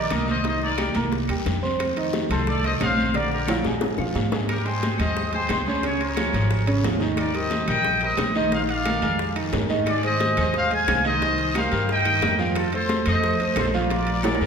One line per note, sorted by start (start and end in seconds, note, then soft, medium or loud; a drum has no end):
0.00 0.11 A#4 medium
0.00 0.11 D5 medium
0.10 0.90 C2 medium
0.10 0.39 A#3 medium
0.10 0.39 A#4 medium
0.10 0.29 A#4 medium
0.10 0.29 D#5 loud
0.10 0.39 A#5 medium
0.10 high bongo soft
0.10 low bongo medium
0.10 high conga medium
0.10 high timbale loud
0.10 short guiro medium
0.10 claves medium
0.27 0.44 C5 medium
0.27 0.45 D#5 loud
0.27 high conga medium
0.27 short guiro medium
0.44 0.73 D#3 medium
0.44 0.73 D#4 medium
0.44 0.62 C5 medium
0.44 0.73 D#5 medium
0.44 high bongo medium
0.44 high conga soft
0.44 high timbale medium
0.44 long guiro medium
0.48 0.62 D#5 loud
0.62 0.94 A#4 medium
0.62 0.94 D5 medium
0.62 high bongo soft
0.62 high conga soft
0.78 0.93 G3 medium
0.78 0.93 G4 medium
0.78 0.93 G5 medium
0.78 high bongo medium
0.78 high conga medium
0.78 high timbale medium
0.78 short guiro medium
0.78 claves medium
0.95 1.27 C2 loud
0.95 1.23 A#3 medium
0.95 1.24 A#4 medium
0.95 1.24 A#5 medium
0.95 high bongo soft
0.95 high conga medium
0.95 high timbale medium
0.95 short guiro medium
1.12 high bongo medium
1.12 high conga soft
1.12 long guiro medium
1.28 1.45 D#2 medium
1.28 1.57 G3 medium
1.28 1.57 G4 medium
1.28 1.57 G5 medium
1.28 high bongo soft
1.28 high conga soft
1.28 high timbale loud
1.28 claves medium
1.46 2.25 F2 medium
1.46 high bongo soft
1.46 low bongo medium
1.46 high conga medium
1.46 high timbale medium
1.46 short guiro medium
1.62 1.90 C4 medium
1.62 1.91 C5 medium
1.62 1.91 C6 medium
1.62 short guiro medium
1.79 high bongo medium
1.79 high conga soft
1.79 high timbale medium
1.79 long guiro medium
1.79 claves medium
1.96 2.24 D#3 medium
1.96 2.25 D#4 medium
1.96 2.25 D#5 medium
1.96 high bongo soft
1.96 high conga soft
1.96 high timbale medium
2.13 high bongo medium
2.13 high conga loud
2.13 short guiro medium
2.29 2.77 C2 medium
2.29 2.58 A3 medium
2.29 2.46 A4 medium
2.29 2.58 A4 medium
2.29 2.46 C5 medium
2.29 2.59 A5 medium
2.29 high bongo soft
2.29 high conga soft
2.29 low conga medium
2.29 high timbale medium
2.29 short guiro medium
2.29 claves medium
2.47 2.64 A4 medium
2.47 2.63 D5 loud
2.47 high bongo medium
2.47 high conga soft
2.47 low conga medium
2.47 long guiro medium
2.63 2.78 D#3 medium
2.63 2.78 D#4 medium
2.63 2.73 C5 medium
2.63 2.78 D#5 medium
2.63 2.73 D#5 medium
2.63 high bongo soft
2.63 high conga soft
2.63 high timbale medium
2.80 3.59 A#1 medium
2.80 3.08 C4 medium
2.80 3.09 C5 medium
2.80 3.13 C5 medium
2.80 3.13 F5 loud
2.80 3.09 C6 medium
2.80 high bongo soft
2.80 low bongo medium
2.80 high conga medium
2.80 high timbale medium
2.80 low timbale medium
2.80 short guiro medium
2.80 claves medium
2.98 high conga medium
2.98 short guiro medium
3.14 3.42 D3 medium
3.14 3.42 D4 medium
3.14 3.32 A#4 medium
3.14 3.43 D5 medium
3.14 3.32 D5 medium
3.14 high bongo medium
3.14 high conga soft
3.14 high timbale medium
3.14 long guiro medium
3.31 3.63 G4 medium
3.31 3.64 A#4 medium
3.31 high bongo soft
3.31 high conga soft
3.47 3.63 F3 medium
3.47 3.63 F4 medium
3.47 3.63 F5 medium
3.47 high bongo medium
3.47 high conga loud
3.47 high timbale loud
3.47 short guiro medium
3.47 claves medium
3.64 3.96 A#2 loud
3.64 3.93 G#3 medium
3.64 3.94 G#4 medium
3.64 3.94 G#5 medium
3.64 high bongo medium
3.64 high conga medium
3.64 short guiro medium
3.81 high bongo loud
3.81 high conga soft
3.81 high timbale medium
3.81 long guiro medium
3.98 4.14 A#2 medium
3.98 4.27 F3 medium
3.98 4.27 F4 medium
3.98 4.27 F5 medium
3.98 low bongo medium
3.98 high conga soft
3.98 claves medium
4.15 4.94 G#2 medium
4.15 high conga medium
4.15 low timbale loud
4.15 short guiro medium
4.32 4.46 G#3 medium
4.32 4.47 G#4 medium
4.32 4.46 G#5 medium
4.32 low bongo loud
4.32 low timbale medium
4.32 short guiro medium
4.49 4.65 G4 medium
4.49 4.65 A#4 medium
4.49 high bongo medium
4.49 high conga soft
4.49 high timbale loud
4.49 long guiro medium
4.49 claves medium
4.65 4.93 G#3 medium
4.65 4.93 G#4 medium
4.65 5.00 G#4 medium
4.65 4.99 C5 medium
4.65 4.93 G5 medium
4.65 high conga soft
4.65 high timbale medium
4.83 high bongo medium
4.83 high conga loud
4.83 high timbale medium
4.83 low timbale medium
4.83 short guiro medium
4.98 5.46 D#2 medium
4.98 5.27 G#3 medium
4.98 5.27 G4 medium
4.98 5.27 G#4 medium
4.98 5.32 C5 medium
4.98 5.31 D#5 loud
4.98 high conga soft
4.98 low conga medium
4.98 high timbale medium
4.98 short guiro medium
4.98 claves medium
5.16 high bongo medium
5.16 high conga soft
5.16 low conga medium
5.16 long guiro medium
5.33 5.61 G#3 medium
5.33 5.61 G#4 medium
5.33 5.65 G#4 medium
5.33 5.65 C5 medium
5.33 5.61 G5 medium
5.33 high conga soft
5.33 high timbale medium
5.49 6.28 C#2 medium
5.49 high bongo medium
5.49 low bongo medium
5.49 high conga medium
5.49 high timbale medium
5.49 low timbale medium
5.49 short guiro medium
5.49 claves medium
5.67 5.81 C#3 medium
5.67 5.81 C#4 medium
5.67 5.83 G#4 medium
5.67 5.83 C5 medium
5.67 5.81 C#5 medium
5.67 high conga medium
5.67 short guiro medium
5.83 6.11 C#3 medium
5.83 6.11 C#4 medium
5.83 6.00 G#4 medium
5.83 6.12 C#5 medium
5.83 6.00 C#5 medium
5.83 high bongo medium
5.83 high conga soft
5.83 high timbale medium
5.83 long guiro medium
6.01 6.65 A#4 medium
6.01 6.65 C#5 medium
6.01 high bongo soft
6.01 high conga soft
6.01 high timbale medium
6.16 6.31 F3 medium
6.16 6.31 F4 medium
6.16 6.31 G#4 medium
6.16 high bongo medium
6.16 high conga loud
6.16 high timbale medium
6.16 low timbale medium
6.16 short guiro medium
6.16 claves medium
6.33 6.80 G#1 loud
6.33 6.61 F3 medium
6.33 6.62 F4 medium
6.33 6.62 G#4 medium
6.33 high conga soft
6.33 high timbale medium
6.33 short guiro medium
6.50 high bongo medium
6.50 high conga soft
6.50 long guiro medium
6.67 6.81 C#3 medium
6.67 6.81 C#4 medium
6.67 6.81 C#5 medium
6.67 high bongo soft
6.67 high conga soft
6.67 high timbale medium
6.67 claves medium
6.84 7.63 D#2 medium
6.84 6.98 F3 medium
6.84 6.98 F4 medium
6.84 6.99 G#4 medium
6.84 high bongo medium
6.84 low bongo medium
6.84 high conga medium
6.84 high timbale medium
6.84 low timbale medium
6.84 short guiro medium
6.99 7.28 D#3 medium
6.99 7.28 D#4 medium
6.99 7.28 D#5 medium
6.99 high bongo soft
6.99 high conga medium
6.99 short guiro medium
7.17 7.34 A#4 medium
7.17 7.34 D5 medium
7.17 high bongo medium
7.17 high conga soft
7.17 high timbale medium
7.17 long guiro medium
7.17 claves medium
7.34 7.62 G3 medium
7.34 7.62 G4 medium
7.34 7.62 A#4 medium
7.34 7.69 C5 medium
7.34 7.68 D#5 loud
7.34 high conga soft
7.34 high timbale medium
7.51 high bongo medium
7.51 high conga loud
7.51 high timbale medium
7.51 low timbale medium
7.51 short guiro medium
7.68 8.15 A#1 medium
7.68 7.96 G3 medium
7.68 7.96 G4 medium
7.68 7.96 A#4 medium
7.68 8.00 D#5 medium
7.68 8.00 G5 loud
7.68 high conga soft
7.68 low conga medium
7.68 high timbale loud
7.68 short guiro medium
7.68 claves medium
7.85 high bongo medium
7.85 high conga soft
7.85 low conga medium
7.85 long guiro medium
8.01 8.30 G3 medium
8.01 8.30 G4 medium
8.01 8.30 A#4 medium
8.01 8.34 C5 medium
8.01 8.34 D#5 medium
8.01 high conga soft
8.01 high timbale medium
8.17 8.97 A#1 medium
8.17 high bongo medium
8.17 low bongo medium
8.17 high conga medium
8.17 high timbale loud
8.17 low timbale medium
8.17 short guiro medium
8.17 claves medium
8.35 8.49 D#3 medium
8.35 8.49 D#4 medium
8.35 8.52 C5 medium
8.35 8.50 D#5 medium
8.35 8.52 D#5 medium
8.35 high conga medium
8.35 short guiro medium
8.52 8.80 D#3 medium
8.52 8.80 D#4 medium
8.52 8.62 C5 medium
8.52 8.80 D#5 medium
8.52 8.62 F5 medium
8.52 high bongo medium
8.52 high conga soft
8.52 high timbale medium
8.52 long guiro medium
8.69 9.33 D5 medium
8.69 9.33 F5 medium
8.69 high bongo soft
8.69 high timbale medium
8.85 8.99 G#3 medium
8.85 8.99 G#4 medium
8.85 9.00 A#4 medium
8.85 high bongo medium
8.85 high conga loud
8.85 high timbale loud
8.85 low timbale medium
8.85 short guiro medium
8.85 claves medium
9.02 9.49 F2 loud
9.02 9.30 G#3 medium
9.02 9.31 G#4 medium
9.02 9.31 A#4 medium
9.02 high conga soft
9.02 high timbale medium
9.02 short guiro medium
9.19 high bongo medium
9.19 long guiro medium
9.35 9.50 D#3 medium
9.35 9.50 D#4 medium
9.35 9.50 D#5 medium
9.35 high bongo soft
9.35 high conga soft
9.35 high timbale medium
9.35 claves medium
9.52 10.32 G#2 medium
9.52 9.66 G#3 medium
9.52 9.67 G#4 medium
9.52 9.67 A#4 medium
9.52 high bongo medium
9.52 low bongo medium
9.52 high conga medium
9.52 high timbale medium
9.52 low timbale medium
9.52 short guiro medium
9.69 9.97 D#3 medium
9.69 9.98 D#4 medium
9.69 9.98 D#5 medium
9.69 high bongo soft
9.69 high conga medium
9.69 short guiro medium
9.86 10.04 G#4 medium
9.86 10.04 D5 medium
9.86 high bongo medium
9.86 high conga soft
9.86 high timbale loud
9.86 long guiro medium
9.86 claves medium
10.03 10.31 G#3 medium
10.03 10.31 G#4 medium
10.03 10.32 C5 medium
10.03 10.36 C5 medium
10.03 10.36 D#5 loud
10.03 high conga soft
10.03 high timbale medium
10.20 high bongo medium
10.20 high conga loud
10.20 high timbale medium
10.20 low timbale medium
10.20 short guiro medium
10.37 10.84 D#2 loud
10.37 10.65 G#3 medium
10.37 10.65 G#4 medium
10.37 10.65 C5 medium
10.37 10.54 C5 medium
10.37 10.54 D#5 medium
10.37 high conga soft
10.37 low conga medium
10.37 high timbale medium
10.37 short guiro medium
10.37 claves medium
10.54 10.71 C5 medium
10.54 10.72 F5 loud
10.54 high bongo medium
10.54 high conga soft
10.54 low conga medium
10.54 long guiro medium
10.70 10.98 G#3 medium
10.70 10.99 G#4 medium
10.70 10.99 C5 medium
10.70 11.04 G#5 loud
10.70 high conga soft
10.70 high timbale medium
10.75 11.04 F5 medium
10.88 11.66 C2 medium
10.88 high bongo medium
10.88 low bongo medium
10.88 high conga medium
10.88 high timbale loud
10.88 low timbale medium
10.88 short guiro medium
10.88 claves medium
11.05 11.19 D#3 medium
11.05 11.19 D#4 medium
11.05 11.53 C5 medium
11.05 11.19 D#5 medium
11.05 11.53 D#5 loud
11.05 high conga medium
11.05 short guiro medium
11.21 11.49 D#3 medium
11.21 11.49 D#4 medium
11.21 11.50 D#5 medium
11.21 high bongo medium
11.21 high conga soft
11.21 high timbale medium
11.21 long guiro medium
11.38 high bongo soft
11.38 high conga soft
11.38 high timbale medium
11.55 11.69 G3 medium
11.55 11.69 G4 medium
11.55 11.69 A#4 medium
11.55 11.87 C5 medium
11.55 11.87 F5 loud
11.55 high bongo medium
11.55 high conga loud
11.55 high timbale loud
11.55 low timbale medium
11.55 short guiro medium
11.55 claves medium
11.71 12.19 G2 medium
11.71 11.99 G3 medium
11.71 12.00 G4 medium
11.71 12.00 A#4 medium
11.71 high conga soft
11.71 high timbale medium
11.71 short guiro medium
11.89 12.37 D#5 medium
11.89 12.37 G5 loud
11.89 high bongo medium
11.89 high conga soft
11.89 long guiro medium
12.05 12.19 D#3 medium
12.05 12.19 D#4 medium
12.05 12.20 D#5 medium
12.05 high bongo soft
12.05 high conga soft
12.05 high timbale medium
12.05 claves medium
12.22 13.01 F2 loud
12.22 12.36 G3 medium
12.22 12.36 G4 medium
12.22 12.36 A#4 medium
12.22 high bongo medium
12.22 low bongo medium
12.22 high conga medium
12.22 high timbale medium
12.22 low timbale medium
12.22 short guiro medium
12.39 12.67 F3 medium
12.39 12.67 F4 medium
12.39 12.67 F5 loud
12.39 high bongo soft
12.39 high conga medium
12.39 short guiro medium
12.55 12.73 F4 medium
12.55 12.73 A4 medium
12.55 high bongo medium
12.55 high conga soft
12.55 high timbale loud
12.55 long guiro medium
12.55 claves medium
12.73 13.01 A3 medium
12.73 13.01 A4 medium
12.73 13.05 A4 medium
12.73 13.01 C5 medium
12.73 13.05 C5 medium
12.73 high timbale medium
12.89 high bongo medium
12.89 high conga loud
12.89 high timbale medium
12.89 low timbale medium
12.89 short guiro medium
13.06 13.54 F2 loud
13.06 13.35 A3 medium
13.06 13.35 A4 medium
13.06 13.35 C5 medium
13.06 13.39 C5 medium
13.06 13.39 D#5 loud
13.06 high conga soft
13.06 low conga medium
13.06 high timbale medium
13.06 short guiro medium
13.06 claves medium
13.23 high bongo medium
13.23 high conga soft
13.23 long guiro medium
13.39 13.68 A3 medium
13.39 13.68 A4 medium
13.39 13.68 C5 medium
13.39 13.57 C5 medium
13.39 13.57 D#5 medium
13.39 high conga soft
13.39 high timbale medium
13.56 14.35 A#1 medium
13.56 13.66 A4 medium
13.56 13.66 C5 medium
13.56 high bongo medium
13.56 low bongo medium
13.56 high conga medium
13.56 high timbale loud
13.56 low timbale medium
13.56 short guiro medium
13.56 claves medium
13.74 13.88 F3 loud
13.74 13.88 F4 loud
13.74 14.46 A#4 medium
13.74 14.46 D5 loud
13.74 13.88 F5 medium
13.74 high conga medium
13.74 short guiro medium
13.90 14.18 F3 medium
13.90 14.18 F4 medium
13.90 14.18 F5 medium
13.90 high bongo medium
13.90 high conga soft
13.90 high timbale medium
13.90 long guiro medium
14.07 high bongo soft
14.07 high conga soft
14.07 high timbale medium
14.23 14.38 G#3 medium
14.23 14.38 G#4 medium
14.23 14.38 A#4 medium
14.23 high bongo medium
14.23 high conga loud
14.23 high timbale medium
14.23 short guiro medium
14.23 claves medium
14.35 high timbale medium
14.40 14.46 F2 loud
14.40 14.46 G#3 medium
14.40 14.46 G#4 medium
14.40 14.46 A#4 medium
14.40 high conga soft
14.40 short guiro medium